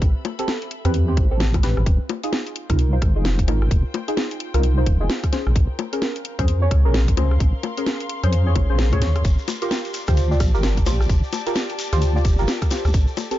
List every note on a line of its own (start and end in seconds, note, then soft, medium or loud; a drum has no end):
0.00 0.14 A1 loud
0.00 1.86 A4 medium
0.00 1.86 E5 medium
0.00 1.86 B5 medium
0.00 kick loud
0.00 closed hi-hat medium
0.25 closed hi-hat medium
0.25 high bongo medium
0.39 0.52 C4 medium
0.39 0.52 G4 medium
0.39 0.52 A4 medium
0.39 closed hi-hat medium
0.48 snare loud
0.62 closed hi-hat soft
0.71 closed hi-hat loud
0.85 1.19 E2 medium
0.85 1.05 C4 medium
0.85 1.05 G4 medium
0.85 1.05 B4 medium
0.85 cross-stick medium
0.85 closed hi-hat medium
0.94 closed hi-hat medium
1.08 1.15 C4 medium
1.08 1.15 G4 medium
1.08 1.15 C5 medium
1.17 1.75 A1 medium
1.17 kick loud
1.17 closed hi-hat loud
1.31 1.44 C4 medium
1.31 1.44 G4 medium
1.31 1.44 A4 medium
1.40 snare loud
1.54 kick medium
1.54 cross-stick soft
1.54 closed hi-hat soft
1.54 high bongo medium
1.63 1.80 C4 medium
1.63 1.80 G4 medium
1.63 1.80 B4 medium
1.63 snare medium
1.63 closed hi-hat loud
1.77 1.85 A1 loud
1.77 cross-stick medium
1.86 1.99 F1 loud
1.86 6.38 F4 medium
1.86 kick loud
1.86 closed hi-hat medium
2.09 closed hi-hat medium
2.09 high bongo medium
2.23 2.37 D#4 medium
2.23 2.37 F4 medium
2.23 2.37 G#4 medium
2.23 closed hi-hat medium
2.31 6.36 C5 medium
2.31 snare loud
2.47 closed hi-hat soft
2.55 6.44 G5 medium
2.55 closed hi-hat loud
2.70 3.03 C2 medium
2.70 2.89 D#4 medium
2.70 2.89 F4 medium
2.70 2.89 A#4 medium
2.70 kick loud
2.70 cross-stick medium
2.70 closed hi-hat medium
2.79 closed hi-hat medium
2.93 3.00 D#4 medium
2.93 3.00 F4 medium
2.93 3.00 C5 medium
3.02 3.17 G#1 loud
3.02 kick loud
3.02 cross-stick medium
3.02 closed hi-hat medium
3.16 3.50 F1 medium
3.16 3.29 D#4 medium
3.16 3.29 F4 medium
3.16 3.29 G#4 medium
3.25 snare loud
3.39 kick medium
3.39 closed hi-hat soft
3.48 3.69 G#1 loud
3.48 3.65 D#4 medium
3.48 3.65 F4 medium
3.48 3.65 A#4 medium
3.48 closed hi-hat loud
3.48 high bongo medium
3.62 cross-stick medium
3.71 3.83 F1 loud
3.71 kick loud
3.71 closed hi-hat medium
3.94 closed hi-hat loud
3.94 high bongo medium
4.08 4.21 D#4 medium
4.08 4.21 F4 medium
4.08 4.21 G#4 medium
4.08 closed hi-hat medium
4.17 snare loud
4.31 closed hi-hat soft
4.40 closed hi-hat loud
4.54 4.88 C2 medium
4.54 4.74 D#4 medium
4.54 4.74 F4 medium
4.54 4.74 A#4 medium
4.54 cross-stick medium
4.54 closed hi-hat medium
4.63 closed hi-hat medium
4.77 4.85 D#4 medium
4.77 4.85 F4 medium
4.77 4.85 C5 medium
4.86 4.99 D#1 medium
4.86 kick loud
4.86 closed hi-hat loud
5.00 5.09 F1 loud
5.00 5.14 D#4 medium
5.00 5.14 F4 medium
5.00 5.14 G#4 medium
5.10 snare loud
5.24 kick medium
5.24 cross-stick soft
5.24 closed hi-hat medium
5.32 5.49 C#4 medium
5.32 5.49 G#4 medium
5.32 10.11 A#4 medium
5.32 5.49 C5 medium
5.32 snare medium
5.32 closed hi-hat loud
5.47 5.55 A#1 medium
5.47 cross-stick medium
5.56 5.68 A#1 loud
5.56 kick loud
5.56 closed hi-hat medium
5.79 closed hi-hat loud
5.79 high bongo medium
5.83 10.75 F5 medium
5.93 6.06 C#4 medium
5.93 6.06 G#4 medium
5.93 6.06 A#4 medium
5.93 closed hi-hat medium
6.02 snare loud
6.16 closed hi-hat soft
6.25 closed hi-hat loud
6.39 6.73 F2 medium
6.39 6.59 C#4 medium
6.39 6.59 G#4 medium
6.39 6.59 C5 medium
6.39 kick medium
6.39 cross-stick medium
6.39 closed hi-hat medium
6.48 closed hi-hat medium
6.62 6.69 C#4 medium
6.62 6.69 G#4 medium
6.62 6.69 C#5 medium
6.66 10.75 C6 medium
6.71 6.87 C#2 loud
6.71 kick loud
6.71 cross-stick medium
6.71 closed hi-hat loud
6.85 7.19 A#1 loud
6.85 6.98 C#4 medium
6.85 6.98 G#4 medium
6.85 6.98 A#4 medium
6.94 snare loud
7.08 kick medium
7.08 closed hi-hat medium
7.17 7.38 C#2 loud
7.17 7.34 C#4 medium
7.17 7.34 G#4 medium
7.17 7.34 C5 medium
7.17 closed hi-hat loud
7.17 high bongo medium
7.31 cross-stick medium
7.40 7.53 A#1 medium
7.40 kick loud
7.40 closed hi-hat medium
7.63 closed hi-hat loud
7.63 high bongo medium
7.77 7.91 C#4 medium
7.77 7.91 G#4 medium
7.77 7.91 A#4 medium
7.77 closed hi-hat medium
7.86 snare loud
8.00 closed hi-hat soft
8.09 closed hi-hat loud
8.24 8.57 F2 medium
8.24 8.43 C#4 medium
8.24 8.43 G#4 medium
8.24 8.43 C5 medium
8.24 cross-stick medium
8.24 closed hi-hat medium
8.33 closed hi-hat medium
8.47 8.54 C#4 medium
8.47 8.54 G#4 medium
8.47 8.54 C#5 medium
8.56 8.68 G#1 medium
8.56 kick loud
8.56 closed hi-hat loud
8.56 high bongo medium
8.70 8.94 A#1 loud
8.70 8.89 C#4 medium
8.70 8.89 G#4 medium
8.70 8.89 C5 medium
8.79 snare loud
8.93 9.03 A#2 loud
8.93 9.00 C#4 loud
8.93 9.00 G#4 medium
8.93 9.00 C#5 loud
8.93 kick medium
8.93 cross-stick medium
8.93 closed hi-hat medium
8.93 high bongo medium
9.02 9.23 D#2 medium
9.02 snare medium
9.02 closed hi-hat loud
9.16 cross-stick medium
9.16 closed hi-hat soft
9.25 9.37 G1 loud
9.25 13.38 G4 medium
9.25 kick loud
9.25 closed hi-hat medium
9.25 shekere soft
9.38 shekere soft
9.48 closed hi-hat loud
9.48 high bongo medium
9.48 shekere medium
9.62 9.75 F4 medium
9.62 9.75 G4 medium
9.62 9.75 A#4 medium
9.62 closed hi-hat medium
9.62 shekere soft
9.71 snare loud
9.71 shekere soft
9.80 13.38 A5 medium
9.85 closed hi-hat soft
9.85 shekere soft
9.92 13.38 D5 medium
9.92 closed hi-hat loud
9.92 shekere medium
10.07 10.42 D2 medium
10.07 10.28 F4 medium
10.07 10.28 G4 medium
10.07 10.28 C5 loud
10.07 kick loud
10.07 cross-stick medium
10.07 closed hi-hat medium
10.07 shekere soft
10.17 closed hi-hat medium
10.17 shekere soft
10.31 10.39 F4 medium
10.31 10.39 G4 medium
10.31 10.38 D5 medium
10.31 shekere soft
10.40 10.56 A#1 loud
10.40 kick loud
10.40 cross-stick medium
10.40 closed hi-hat loud
10.40 shekere medium
10.54 10.88 G1 loud
10.54 10.67 F4 medium
10.54 10.67 G4 medium
10.54 10.67 A#4 medium
10.54 shekere soft
10.63 snare loud
10.63 shekere medium
10.77 kick medium
10.77 closed hi-hat medium
10.77 shekere soft
10.86 11.07 A#1 medium
10.86 11.03 F4 medium
10.86 11.03 G4 medium
10.86 11.03 C5 medium
10.86 closed hi-hat loud
10.86 high bongo medium
10.86 shekere medium
11.00 cross-stick medium
11.00 shekere soft
11.09 11.22 G1 loud
11.09 kick loud
11.09 closed hi-hat medium
11.09 shekere medium
11.23 shekere soft
11.33 closed hi-hat loud
11.33 high bongo medium
11.33 shekere medium
11.46 11.60 F4 medium
11.46 11.60 G4 medium
11.46 11.60 A#4 medium
11.46 closed hi-hat medium
11.46 shekere soft
11.55 snare loud
11.55 shekere medium
11.69 closed hi-hat soft
11.69 shekere soft
11.79 closed hi-hat loud
11.79 shekere medium
11.93 12.26 D2 medium
11.93 12.12 F4 medium
11.93 12.12 G4 medium
11.93 12.12 C5 medium
11.93 cross-stick medium
11.93 closed hi-hat medium
11.93 shekere soft
12.02 closed hi-hat medium
12.02 shekere soft
12.16 12.23 F4 medium
12.16 12.23 G4 medium
12.16 12.23 D5 medium
12.16 shekere soft
12.25 12.37 F1 loud
12.25 kick loud
12.25 closed hi-hat loud
12.25 shekere medium
12.38 12.47 G1 loud
12.38 12.52 F4 medium
12.38 12.52 G4 medium
12.38 12.52 A#4 medium
12.38 shekere soft
12.48 snare loud
12.48 shekere medium
12.62 kick medium
12.62 cross-stick medium
12.62 closed hi-hat soft
12.62 shekere soft
12.70 12.88 F4 medium
12.70 12.88 G4 medium
12.70 12.88 C5 medium
12.70 snare medium
12.70 closed hi-hat loud
12.70 shekere loud
12.85 12.93 D2 medium
12.85 cross-stick medium
12.85 shekere soft
12.93 13.07 A1 medium
12.93 13.38 A4 medium
12.93 kick loud
12.93 closed hi-hat medium
12.93 shekere medium
13.07 shekere soft
13.17 closed hi-hat loud
13.17 high bongo medium
13.17 shekere loud
13.31 13.38 C4 medium
13.31 13.38 G4 medium
13.31 13.38 A4 medium
13.31 closed hi-hat medium
13.31 shekere soft